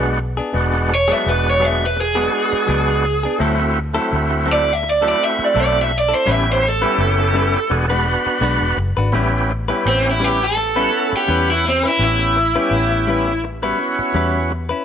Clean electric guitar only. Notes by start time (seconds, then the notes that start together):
0.18 muted clean electric guitar stroke
0.37 B3 D4 G#4
0.72 muted clean electric guitar stroke
0.89 muted clean electric guitar stroke
1.08 F#3 B3 D4 G#4
1.44 muted clean electric guitar stroke
1.60 F#3 B3 D4 G#4
1.80 muted clean electric guitar stroke
1.96 muted clean electric guitar stroke
2.15 F#3 B3 D4 G#4
2.32 muted clean electric guitar stroke
2.52 muted clean electric guitar stroke
2.67 F#3 B3 D4 G#4
3.05 muted clean electric guitar stroke
3.23 B3 D4 G#4
3.40 F#3 C4 E4 A4
3.59 muted clean electric guitar stroke
3.75 muted clean electric guitar stroke
3.95 F#3 C4 E4 A4
4.30 muted clean electric guitar stroke
4.46 F#3 C4 E4 A4
4.66 muted clean electric guitar stroke
4.83 muted clean electric guitar stroke
5.02 F#3 C4 E4 A4
5.19 muted clean electric guitar stroke
5.39 muted clean electric guitar stroke
5.54 F#3 C4 E4 A4
5.90 muted clean electric guitar stroke
6.09 C4 E4 A4
6.26 G3 C#4 E4 B4
6.46 muted clean electric guitar stroke
6.63 muted clean electric guitar stroke
6.82 G3 C#4 E4 B4
7.19 muted clean electric guitar stroke
7.34 G3 C#4 E4 B4
7.54 muted clean electric guitar stroke
7.71 muted clean electric guitar stroke
7.90 G#3 D4 F#4 B4
8.06 muted clean electric guitar stroke
8.26 muted clean electric guitar stroke
8.41 G#3 D4 F#4 B4
8.77 muted clean electric guitar stroke
8.97 D4 F#4 B4
9.13 G3 C#4 E4 B4
9.33 muted clean electric guitar stroke
9.49 muted clean electric guitar stroke
9.68 G3 C#4 E4 B4
10.05 muted clean electric guitar stroke
10.20 G3 C#4 E4 B4
10.40 muted clean electric guitar stroke
10.57 muted clean electric guitar stroke
10.76 G3 C#4 E4 B4
10.92 muted clean electric guitar stroke
11.12 muted clean electric guitar stroke
11.28 G3 C#4 E4 B4
11.64 muted clean electric guitar stroke
11.84 C#4 E4 B4
12.20 muted clean electric guitar stroke
12.36 muted clean electric guitar stroke
12.56 G3 C#4 E4 B4
12.91 muted clean electric guitar stroke
13.07 G3 C#4 E4 B4
13.28 muted clean electric guitar stroke
13.44 muted clean electric guitar stroke
13.63 G3 C#4 E4 B4
13.79 muted clean electric guitar stroke
13.99 muted clean electric guitar stroke
14.14 G3 C#4 E4 B4
14.50 muted clean electric guitar stroke
14.69 C#4 E4 B4